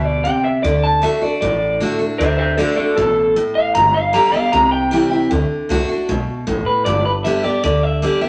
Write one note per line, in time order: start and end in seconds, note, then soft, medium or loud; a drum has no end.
0.00 0.27 D2 medium
0.00 0.23 B2 medium
0.05 0.24 D5 medium
0.24 0.62 C3 medium
0.24 0.43 G5 loud
0.44 0.63 E5 medium
0.44 muted upright bass stroke medium
0.63 1.05 D2 medium
0.63 1.01 D3 loud
0.63 0.82 D5 loud
0.84 1.02 A5 loud
1.02 1.21 D3 medium
1.02 1.21 A3 loud
1.02 1.22 D4 loud
1.02 1.20 F#4 loud
1.02 1.23 E5 medium
1.21 1.42 D4 medium
1.21 1.41 F#4 medium
1.21 1.40 D5 loud
1.21 muted upright bass stroke medium
1.41 1.83 A1 medium
1.41 2.16 A2 medium
1.41 1.79 D5 loud
1.80 1.99 D3 medium
1.80 2.00 A3 medium
1.80 2.00 D4 loud
1.80 1.98 F#4 loud
1.99 2.19 D4 medium
1.99 2.18 F#4 medium
1.99 muted upright bass stroke medium
2.18 2.61 D2 loud
2.18 2.56 D3 loud
2.18 2.37 C5 medium
2.18 2.38 E5 loud
2.38 2.57 C5 medium
2.38 2.58 E5 loud
2.57 2.77 D3 medium
2.57 2.77 A3 loud
2.57 2.77 D4 loud
2.57 2.76 F#4 loud
2.57 2.75 A4 medium
2.57 2.75 D5 loud
2.76 2.98 D4 medium
2.76 2.96 F#4 medium
2.76 2.95 A4 medium
2.76 2.96 D5 medium
2.76 muted upright bass stroke medium
2.96 3.38 A1 medium
2.96 3.34 B2 loud
2.96 3.35 A4 loud
3.36 3.73 A2 loud
3.55 3.74 F5 loud
3.55 muted upright bass stroke medium
3.75 4.17 G1 loud
3.75 4.49 G2 loud
3.75 3.94 A#5 loud
3.94 4.13 F5 loud
4.13 4.32 D3 medium
4.13 4.33 G3 loud
4.13 4.33 B3 loud
4.13 4.32 G4 loud
4.13 4.33 A#5 medium
4.32 4.53 B3 medium
4.32 4.52 G4 medium
4.32 4.51 F5 loud
4.32 muted upright bass stroke medium
4.52 4.94 C2 medium
4.52 5.27 C3 loud
4.52 4.71 A#5 loud
4.72 5.29 G5 loud
4.91 5.10 E3 loud
4.91 5.10 G3 medium
4.91 5.11 C4 medium
4.91 5.10 E4 loud
5.11 5.31 C4 medium
5.11 5.30 E4 medium
5.11 muted upright bass stroke medium
5.31 5.45 D2 loud
5.31 5.68 D3 loud
5.51 muted upright bass stroke medium
5.69 5.86 C2 medium
5.69 5.88 D3 medium
5.69 5.88 A3 loud
5.69 5.89 D4 loud
5.69 5.88 F#4 loud
5.89 6.09 D4 medium
5.89 6.08 F#4 medium
5.89 muted upright bass stroke medium
6.09 6.25 B1 medium
6.09 6.45 B2 loud
6.28 muted upright bass stroke medium
6.47 6.64 A1 medium
6.47 6.84 A2 medium
6.66 6.84 B4 medium
6.66 muted upright bass stroke medium
6.85 7.27 G1 loud
6.85 7.60 G2 loud
6.85 7.05 D5 medium
7.05 7.11 B4 medium
7.24 7.43 D3 medium
7.24 7.44 G3 medium
7.24 7.44 B3 loud
7.24 7.42 G4 loud
7.24 7.44 E5 loud
7.43 7.64 B3 soft
7.43 7.62 G4 medium
7.43 7.62 D5 medium
7.43 muted upright bass stroke medium
7.64 8.05 D2 medium
7.64 8.01 D3 loud
7.64 7.83 D5 loud
7.83 8.03 E5 medium
8.02 8.21 D3 medium
8.02 8.21 G3 loud
8.02 8.22 B3 medium
8.02 8.20 G4 loud
8.02 8.21 D5 loud
8.21 8.29 B3 medium
8.21 8.29 G4 medium
8.21 8.29 E5 medium
8.21 muted upright bass stroke medium